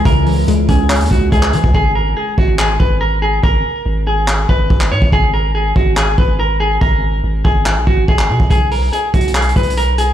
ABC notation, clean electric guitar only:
X:1
M:4/4
L:1/8
Q:1/4=142
K:G#m
V:1 name="Clean electric guitar"
A3 G2 F G2 | G A G F G B A G | A3 G2 B2 c | G A G F G B A G |
A3 G2 F G2 | G A G F G B A G |]